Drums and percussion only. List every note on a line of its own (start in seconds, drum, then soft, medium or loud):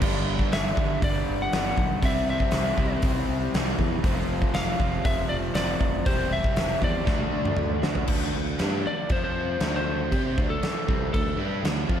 0.02 kick loud
0.02 crash loud
0.39 kick medium
0.52 snare loud
0.52 open hi-hat medium
0.77 kick loud
1.02 kick loud
1.02 open hi-hat medium
1.53 snare loud
1.53 open hi-hat medium
1.77 kick medium
2.02 kick loud
2.02 open hi-hat medium
2.40 kick medium
2.51 snare loud
2.51 open hi-hat medium
2.78 kick medium
3.02 kick loud
3.02 open hi-hat medium
3.54 snare loud
3.54 open hi-hat medium
3.79 kick medium
4.04 kick loud
4.04 open hi-hat medium
4.42 kick medium
4.54 snare loud
4.54 open hi-hat medium
4.80 kick medium
5.05 kick loud
5.05 open hi-hat medium
5.55 snare loud
5.55 open hi-hat medium
5.81 kick medium
6.06 kick loud
6.06 open hi-hat medium
6.44 kick medium
6.56 snare loud
6.56 open hi-hat medium
6.82 kick medium
7.07 kick loud
7.07 snare medium
7.20 high tom medium
7.45 mid tom medium
7.57 mid tom medium
7.83 snare loud
7.95 floor tom medium
8.07 kick loud
8.07 crash loud
8.07 crash medium
8.59 snare loud
8.59 crash medium
9.09 kick loud
9.09 crash medium
9.60 snare loud
9.60 crash medium
10.12 kick loud
10.12 crash medium
10.38 kick loud
10.63 snare loud
10.63 crash medium
10.89 kick loud
11.14 kick loud
11.14 crash medium
11.65 snare loud
11.65 crash medium
11.90 kick loud